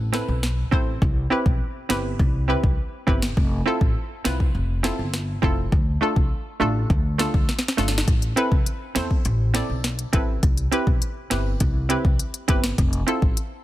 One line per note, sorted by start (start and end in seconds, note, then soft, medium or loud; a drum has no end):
0.00 0.18 A1 loud
0.12 0.25 C4 medium
0.12 0.25 E4 medium
0.12 0.25 A4 medium
0.12 0.26 B4 medium
0.12 snare loud
0.28 0.62 B1 medium
0.43 snare medium
0.71 0.95 A1 medium
0.71 0.84 C4 medium
0.71 0.84 E4 medium
0.71 0.84 A4 medium
0.71 0.85 C5 loud
0.71 kick medium
1.02 1.24 C2 loud
1.02 kick loud
1.30 1.43 C4 medium
1.30 1.43 E4 medium
1.30 1.43 G4 medium
1.30 1.43 B4 loud
1.46 1.57 B1 medium
1.46 kick loud
1.89 2.12 G1 medium
1.89 2.01 C4 medium
1.89 2.02 E4 medium
1.89 2.02 G4 medium
1.89 2.02 B4 medium
1.89 snare loud
2.19 2.53 C2 loud
2.19 kick medium
2.48 2.60 C4 medium
2.48 2.60 E4 medium
2.48 2.61 G4 medium
2.48 2.61 B4 medium
2.64 2.75 C2 medium
2.64 kick medium
3.07 3.30 G1 medium
3.07 3.19 C4 medium
3.07 3.19 E4 medium
3.07 3.20 G4 medium
3.07 3.20 B4 loud
3.07 kick medium
3.22 snare loud
3.37 3.59 F1 loud
3.37 kick loud
3.66 3.78 C4 medium
3.66 3.78 E4 medium
3.66 3.78 F4 medium
3.66 3.79 A4 loud
3.81 3.92 A1 medium
3.81 kick loud
4.24 4.48 C2 medium
4.24 4.37 C4 medium
4.24 4.37 E4 medium
4.24 4.37 F4 medium
4.24 4.38 B4 loud
4.24 snare loud
4.40 kick loud
4.55 4.88 F1 medium
4.83 4.95 C4 medium
4.83 4.96 E4 medium
4.83 4.96 F4 medium
4.83 4.96 A4 loud
4.83 snare loud
4.99 5.32 G1 medium
5.14 snare medium
5.42 5.65 F1 medium
5.42 5.54 C4 medium
5.42 5.55 E4 medium
5.42 5.55 F4 medium
5.42 5.55 A4 medium
5.42 kick medium
5.72 5.95 D2 loud
5.72 kick loud
6.01 6.13 A3 medium
6.01 6.13 D4 medium
6.01 6.14 F4 medium
6.01 6.14 A4 loud
6.16 6.28 C2 medium
6.16 kick medium
6.60 6.83 A1 medium
6.60 6.72 A3 medium
6.60 6.72 D4 medium
6.60 6.73 F4 medium
6.60 6.73 A4 loud
6.90 7.23 D2 loud
6.90 kick loud
7.18 7.31 A3 medium
7.18 7.31 D4 medium
7.18 7.31 F4 medium
7.18 7.32 A4 medium
7.18 snare medium
7.34 7.45 D2 medium
7.34 kick medium
7.49 snare medium
7.59 snare medium
7.68 snare medium
7.77 8.00 G1 medium
7.77 7.90 A3 medium
7.77 7.90 D4 medium
7.77 7.90 F4 medium
7.77 7.91 A4 loud
7.77 snare medium
7.88 snare loud
7.98 snare medium
8.08 8.30 A1 loud
8.08 kick loud
8.08 closed hi-hat medium
8.22 closed hi-hat medium
8.36 8.48 C4 medium
8.36 8.49 E4 medium
8.36 8.49 A4 medium
8.36 8.49 B4 loud
8.36 closed hi-hat medium
8.52 8.63 C2 medium
8.52 kick loud
8.66 closed hi-hat medium
8.95 9.18 E2 loud
8.95 9.07 C4 medium
8.95 9.08 E4 medium
8.95 9.08 A4 medium
8.95 9.08 C5 medium
8.95 snare loud
8.95 closed hi-hat medium
9.11 kick medium
9.25 9.59 A1 loud
9.25 closed hi-hat medium
9.54 9.66 C4 medium
9.54 9.66 E4 medium
9.54 9.67 A4 medium
9.54 9.67 D5 loud
9.54 snare loud
9.54 closed hi-hat medium
9.69 10.03 B1 medium
9.84 snare medium
9.84 closed hi-hat medium
9.99 closed hi-hat medium
10.13 10.36 A1 medium
10.13 10.25 C4 medium
10.13 10.25 E4 medium
10.13 10.25 A4 medium
10.13 10.26 B4 medium
10.13 kick medium
10.13 closed hi-hat medium
10.43 10.65 C2 loud
10.43 kick loud
10.43 closed hi-hat medium
10.57 closed hi-hat medium
10.71 10.84 C4 medium
10.71 10.84 E4 medium
10.71 10.84 G4 medium
10.71 10.85 B4 loud
10.71 closed hi-hat medium
10.87 10.98 B1 medium
10.87 kick loud
11.02 closed hi-hat medium
11.30 11.53 G1 medium
11.30 11.42 C4 medium
11.30 11.43 E4 medium
11.30 11.43 G4 medium
11.30 11.43 B4 medium
11.30 snare loud
11.30 closed hi-hat medium
11.60 11.94 C2 loud
11.60 kick medium
11.60 closed hi-hat medium
11.89 12.01 C4 medium
11.89 12.02 E4 medium
11.89 12.02 G4 medium
11.89 12.02 B4 loud
11.89 closed hi-hat medium
12.05 12.16 C2 medium
12.05 kick medium
12.19 closed hi-hat medium
12.34 closed hi-hat medium
12.48 12.71 G1 medium
12.48 12.60 C4 medium
12.48 12.60 E4 medium
12.48 12.61 G4 medium
12.48 12.61 B4 loud
12.48 kick medium
12.48 closed hi-hat medium
12.64 snare loud
12.78 13.01 F1 loud
12.78 kick loud
12.78 closed hi-hat medium
12.93 closed hi-hat medium
13.07 13.19 C4 medium
13.07 13.19 E4 medium
13.07 13.20 F4 medium
13.07 13.20 A4 loud
13.07 closed hi-hat medium
13.22 13.33 A1 medium
13.22 kick loud
13.37 closed hi-hat medium